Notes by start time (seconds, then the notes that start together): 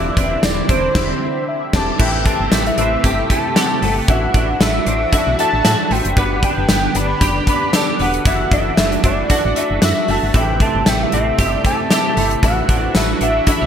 Already playing: E1 D3 E3 C4 D4 E4 G4 D5 E5
0.16 E1 C4 D4 E4 G4 D5, kick, closed hi-hat
0.42 E1 C4 D4 E4 G4 D5, snare, closed hi-hat, tambourine
0.69 E1 C4 D4 E4 G4 C5 D5, kick, closed hi-hat
0.94 E1 C4 D4 E4 G4 E5, kick, snare, crash
1.48 E5
1.73 E1 C4 D4 E4 G4 D5 A5, kick, snare, crash
1.99 A1 C3 E3 A3 C4 E4 G4 A4 E5 G5, kick, crash
2.15 G5
2.25 C4 E4 G4 A4 G5 A5, kick, closed hi-hat
2.40 G1
2.51 A1 A3 C4 E4 G4 A4 E5 G5, snare, closed hi-hat, tambourine
2.66 E5, closed hi-hat
2.77 A1 C4 E4 G4 A4 B4 E5, closed hi-hat
3.04 G1 C4 E4 G4 A4 G5, kick, closed hi-hat
3.30 A3 C4 E4 G4 A4 G5 A5, kick, closed hi-hat
3.56 C4 E4 G4 A4 F#5, snare, closed hi-hat, tambourine
3.82 G1 A3 C4 E4 G4 A4 G5, open hi-hat
4.08 A1 E3 D4 E4 F#4 A4 E5 F#5, kick, closed hi-hat
4.34 A1 D4 E4 F#4 A4 E5, kick, closed hi-hat
4.60 A1 A3 D4 E4 F#4 A4 E5, snare, closed hi-hat, tambourine
4.85 A1 D4 E4 F#4 A4 C5 E5, closed hi-hat
5.12 D4 E4 F#4 A4 E5, kick, closed hi-hat
5.27 B1
5.38 A3 D4 E4 F#4 A4 E5 A5, closed hi-hat
5.53 A1
5.63 A2 D4 E4 F#4 A4 E5, snare, closed hi-hat, tambourine
5.90 A1 A3 D4 E4 F#4 A4 C5 G5, open hi-hat
6.05 F#1, closed hi-hat
6.16 G1 D3 B3 D4 G4 B4 F#5, kick, closed hi-hat
6.42 D4 G4 B4 G5, kick, closed hi-hat
6.57 F#1
6.68 G1 B3 D4 G4 D5, snare, closed hi-hat, tambourine
6.94 G1 D4 G4 D5 B5, closed hi-hat
7.20 F#1 D4 G4 D5, kick, closed hi-hat
7.47 B3 D4 G4 B4 B5, kick, closed hi-hat
7.72 D4 G4 A4 D5, snare, closed hi-hat, tambourine
7.99 E1 B3 D4 G4 D5 F#5, open hi-hat
8.14 closed hi-hat
8.25 F#1 E3 D4 E4 F#4 A4 E5 F#5, kick, closed hi-hat
8.51 F#1 D4 E4 F#4 A4 E5 F#5, kick, closed hi-hat
8.77 F#1 A3 D4 E4 F#4 A4 E5, snare, closed hi-hat, tambourine
8.92 closed hi-hat
9.03 F#1 D4 E4 F#4 A4 D5 E5, kick, closed hi-hat
9.29 D4 E4 F#4 A4 F#5, kick, closed hi-hat
9.45 A1
9.56 A3 D4 E4 F#4 A4 E5, closed hi-hat
9.70 F#1
9.81 F#2 D4 E4 F#4 A4 E5, snare, closed hi-hat, tambourine
10.08 F#1 A3 D4 E4 F#4 A4 E5 A5, open hi-hat
10.23 G1
10.34 A1 C3 E3 A3 C4 E4 G4 A4 E5 G5, kick, closed hi-hat
10.51 G5
10.60 C4 E4 G4 A4 E5 A5, kick, closed hi-hat
10.75 G1
10.85 A1 A3 C4 E4 G4 A4 E5 G5, snare, closed hi-hat, tambourine
11.03 E5
11.12 A1 C4 E4 G4 A4 E5 F#5, closed hi-hat
11.38 G1 C4 E4 G4 A4 E5, kick, closed hi-hat
11.64 A3 C4 E4 G4 A4 E5 A5, kick, closed hi-hat
11.90 C4 E4 G4 A4 E5, snare, closed hi-hat, tambourine
12.16 G1 A3 C4 E4 G4 A4 E5, open hi-hat
12.31 closed hi-hat
12.42 A1 E3 D4 E4 F#4 A4 E5 F#5, kick, closed hi-hat
12.68 A1 D4 E4 F#4 A4 C5, kick, closed hi-hat
12.94 A1 A3 D4 E4 F#4 A4 B4 E5, snare, closed hi-hat, tambourine
13.20 A1 D4 E4 F#4 A4 E5 F#5, closed hi-hat
13.46 D4 E4 F#4 A4 E5, kick, closed hi-hat
13.62 B1 F#4